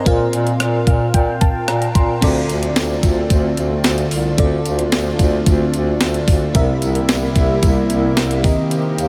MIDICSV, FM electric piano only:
0, 0, Header, 1, 2, 480
1, 0, Start_track
1, 0, Tempo, 540541
1, 54, Time_signature, 4, 2, 24, 8
1, 8063, End_track
2, 0, Start_track
2, 0, Title_t, "FM electric piano"
2, 0, Program_c, 0, 5
2, 0, Control_c, 0, 64, 127
2, 0, Note_on_c, 0, 72, 49
2, 0, Note_on_c, 0, 80, 60
2, 46, Note_on_c, 0, 60, 74
2, 52, Note_on_c, 0, 65, 65
2, 55, Note_on_c, 0, 46, 70
2, 59, Note_on_c, 0, 70, 68
2, 64, Control_c, 0, 64, 0
2, 66, Note_on_c, 0, 77, 79
2, 165, Note_off_c, 0, 80, 0
2, 166, Note_off_c, 0, 72, 0
2, 233, Control_c, 0, 64, 127
2, 739, Note_off_c, 0, 46, 0
2, 764, Note_off_c, 0, 77, 0
2, 775, Note_on_c, 0, 77, 64
2, 998, Note_off_c, 0, 77, 0
2, 1014, Note_on_c, 0, 79, 67
2, 1238, Note_off_c, 0, 79, 0
2, 1251, Note_on_c, 0, 81, 66
2, 1476, Note_off_c, 0, 81, 0
2, 1492, Note_on_c, 0, 82, 64
2, 1716, Note_off_c, 0, 82, 0
2, 1734, Note_on_c, 0, 84, 62
2, 1934, Note_off_c, 0, 60, 0
2, 1938, Note_off_c, 0, 65, 0
2, 1941, Note_off_c, 0, 70, 0
2, 1957, Note_off_c, 0, 84, 0
2, 1964, Note_on_c, 0, 60, 71
2, 1973, Note_on_c, 0, 65, 68
2, 1976, Note_on_c, 0, 50, 69
2, 1978, Note_on_c, 0, 69, 67
2, 1985, Control_c, 0, 64, 0
2, 1987, Note_on_c, 0, 74, 79
2, 2119, Control_c, 0, 64, 127
2, 2659, Note_off_c, 0, 50, 0
2, 3854, Note_off_c, 0, 60, 0
2, 3858, Note_off_c, 0, 65, 0
2, 3861, Note_off_c, 0, 69, 0
2, 3865, Note_off_c, 0, 74, 0
2, 3884, Note_on_c, 0, 60, 71
2, 3890, Note_on_c, 0, 65, 69
2, 3893, Note_on_c, 0, 50, 69
2, 3898, Note_on_c, 0, 69, 67
2, 3903, Note_on_c, 0, 74, 76
2, 4578, Note_off_c, 0, 50, 0
2, 5773, Note_off_c, 0, 60, 0
2, 5777, Note_off_c, 0, 65, 0
2, 5780, Note_off_c, 0, 69, 0
2, 5783, Note_off_c, 0, 74, 0
2, 5804, Note_on_c, 0, 60, 76
2, 5810, Note_on_c, 0, 67, 70
2, 5813, Note_on_c, 0, 48, 74
2, 5818, Note_on_c, 0, 70, 69
2, 5825, Note_on_c, 0, 76, 80
2, 5826, Control_c, 0, 64, 0
2, 5976, Control_c, 0, 64, 127
2, 6498, Note_off_c, 0, 48, 0
2, 7455, Note_off_c, 0, 60, 0
2, 7459, Note_off_c, 0, 67, 0
2, 7462, Note_off_c, 0, 70, 0
2, 7466, Note_off_c, 0, 76, 0
2, 7487, Note_on_c, 0, 60, 67
2, 7494, Note_on_c, 0, 67, 65
2, 7497, Note_on_c, 0, 51, 67
2, 7500, Note_on_c, 0, 70, 67
2, 7505, Control_c, 0, 64, 0
2, 7506, Note_on_c, 0, 75, 74
2, 7680, Control_c, 0, 64, 127
2, 8063, Note_off_c, 0, 51, 0
2, 8063, Note_off_c, 0, 60, 0
2, 8063, Note_off_c, 0, 67, 0
2, 8063, Note_off_c, 0, 70, 0
2, 8063, Note_off_c, 0, 75, 0
2, 8063, End_track
0, 0, End_of_file